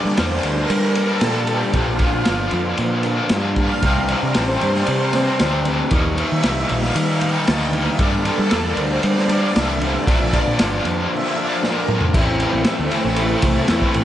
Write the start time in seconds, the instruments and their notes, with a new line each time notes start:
Already playing: overdriven electric guitar G2 D3 G3 A#3 D4
0.05 picked electric bass G3, string machine D5
0.17 picked electric bass E2, overdriven electric guitar D3 G3 A#3 D4, string machine C5, snare, ride
0.43 picked electric bass D2, ride
0.57 string machine A#4
0.70 picked electric bass G3, ride
0.95 overdriven electric guitar G3 A#3 D4, ride
1.08 string machine A4
1.21 overdriven electric guitar G2 D3 G3 A#3, picked electric bass A#2, snare, ride
1.25 overdriven electric guitar D4
1.47 overdriven electric guitar A#3 D4, string machine G4, ride
1.51 overdriven electric guitar G3
1.73 picked electric bass A#1, overdriven electric guitar A#2 D3 F3 A#3 D4, string machine F4, kick, ride
1.99 overdriven electric guitar A#3 D4, kick, ride
2.03 overdriven electric guitar F3
2.14 picked electric bass A#2
2.25 picked electric bass G1, overdriven electric guitar D3 F3 A#3, snare, ride
2.29 overdriven electric guitar D4
2.51 picked electric bass F2, ride
2.77 picked electric bass A#2, ride
3.03 overdriven electric guitar A#3 D4, ride
3.07 overdriven electric guitar F3
3.29 picked electric bass G2, overdriven electric guitar A#2 D3 F3 A#3, snare, ride
3.33 overdriven electric guitar D4
3.56 overdriven electric guitar F3 A#3 D4, string machine F5, kick, ride
3.82 picked electric bass C2, overdriven electric guitar C3 G3 C4, kick, ride
3.87 overdriven electric guitar D4
3.98 high conga
4.07 overdriven electric guitar D4, string machine E5, ride, low conga
4.11 overdriven electric guitar G3 C4
4.21 picked electric bass C3, string machine D5
4.34 picked electric bass A1, overdriven electric guitar C3 G3 C4 D4, string machine C5, snare, ride
4.47 string machine C5
4.61 picked electric bass G2, ride, low conga
4.72 string machine D5, snare
4.85 picked electric bass C3, string machine C5, ride
5.13 overdriven electric guitar G3 C4 D4, snare, ride, high conga
5.38 picked electric bass D2, overdriven electric guitar C3 G3 C4 D4, snare, ride
5.64 overdriven electric guitar G3 C4 D4, ride, low conga
5.78 high conga
5.91 picked electric bass D#2, overdriven electric guitar D#3 G3 A#3 D#4, kick, ride
6.04 high conga
6.16 overdriven electric guitar G3 A#3 D#4, string machine E5, ride, low conga
6.32 picked electric bass D#3
6.42 picked electric bass C2, overdriven electric guitar D#3 G3 A#3 D#4, snare, ride
6.57 snare
6.69 picked electric bass A#1, string machine F5, ride, low conga
6.82 snare
6.95 picked electric bass D#3, string machine E5, ride
7.12 string machine F5
7.20 overdriven electric guitar G3 A#3 D#4, ride, high conga
7.24 string machine G5
7.38 string machine A5
7.46 picked electric bass D2, overdriven electric guitar D#3 G3 A#3 D#4, snare, ride
7.52 string machine G5
7.72 overdriven electric guitar G3 A#3 D#4, string machine F5, ride, low conga
7.85 string machine E5, high conga
7.97 overdriven electric guitar G2 D3 G3 A#3 D4, picked electric bass G2, kick, ride
8.02 string machine D5
8.12 high conga
8.24 overdriven electric guitar G3 A#3 D4, string machine A4, ride, low conga
8.39 picked electric bass G3
8.50 picked electric bass E2, overdriven electric guitar D3 G3 A#3 D4, snare, ride
8.65 string machine A#4, snare
8.76 picked electric bass D2, string machine C5, ride, low conga
9.03 picked electric bass G3, string machine D5, ride
9.15 string machine C5, snare
9.27 overdriven electric guitar A#3 D4, string machine D5, ride, high conga
9.32 overdriven electric guitar G3
9.52 overdriven electric guitar G2 D3, string machine E5, ride
9.56 picked electric bass C2, overdriven electric guitar G3 A#3 D4, snare
9.80 overdriven electric guitar A#3 D4, string machine C5, ride, low conga
9.85 overdriven electric guitar G3
9.93 string machine D5, high conga
10.06 picked electric bass A#1, overdriven electric guitar A#2 D3 F3 A#3, string machine E5, kick, ride
10.10 overdriven electric guitar D4
10.18 string machine D5, high conga
10.33 overdriven electric guitar F3 A#3 D4, kick, ride, low conga
10.47 picked electric bass A#2
10.58 picked electric bass G1, overdriven electric guitar D3 F3 A#3 D4, snare, ride, low conga
10.85 picked electric bass F2, ride, high conga, low conga
11.11 string machine E5
11.35 overdriven electric guitar F3 A#3 D4, string machine D5
11.50 string machine C5
11.62 overdriven electric guitar A#2 D3 F3 A#3 D4, snare
11.66 string machine A#4
11.88 overdriven electric guitar F3 A#3 D4, mid tom
12.01 floor tom
12.13 picked electric bass A1, overdriven electric guitar A2 E3 A3 C4, string machine E4 A4 C5 E5, kick, crash
12.17 overdriven electric guitar E4
12.40 ride
12.53 picked electric bass A1, high conga
12.64 snare, ride
12.79 picked electric bass D2
12.90 overdriven electric guitar A2 E3 A3 C4 E4, ride, low conga
13.04 picked electric bass A1, high conga
13.16 ride
13.42 picked electric bass C2, kick, ride
13.68 picked electric bass E2, overdriven electric guitar A2 E3 A3 C4, snare, ride
13.73 overdriven electric guitar E4
13.82 kick
13.94 picked electric bass A1, ride, high conga, low conga